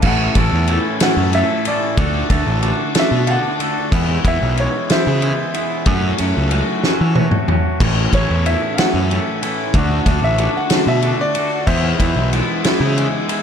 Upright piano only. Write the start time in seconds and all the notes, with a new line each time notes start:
0.01 F5
0.06 F#5
1.03 F#5
1.35 E5
1.68 D5
2.99 E5
3.27 F5 F#5
4.28 E5
4.60 C#5
4.92 C5 E5
8.15 C#5
8.46 E5
8.74 F5
8.78 F#5
10.24 E5
10.57 F#5
10.88 E5
11.21 D5
11.67 C5 E5